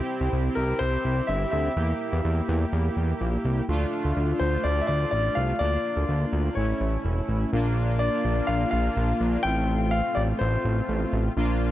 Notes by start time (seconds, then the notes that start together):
Already playing: C4 E4 G4
0.21 C2
0.33 C2
0.55 C2 A#4
0.79 C2 C5
1.05 C2
1.27 G1 E5
1.51 D2 E5
1.77 E2 A#3 E4 G4
2.13 E2
2.25 E2
2.49 E2
2.73 E2
2.97 E2
3.21 A#1
3.45 C2
3.69 D2 A3 D4 F4
4.05 D2
4.17 D2
4.40 D2 C5
4.64 D2 D5
4.81 E5
4.87 D2 D5
5.11 A1 D5
5.35 C2 F5
5.59 D2 A#3 D4 F4 D5
5.97 D2
6.09 D2
6.33 D2
6.55 A1 A3 C#4 E4 C#5
6.81 A1
7.05 E1
7.29 A1
7.53 A#1 A#3 D4 F4
7.99 D5
8.25 A#1
8.47 A#1 F5
8.71 A#1 F5
8.97 A#1
9.21 A#1
9.43 A1 A3 C4 F4 G5
9.91 F5
10.15 A1 D5
10.39 A1 C5
10.65 A1
10.89 A1
11.13 A1
11.37 A#1 A#3 D4 F4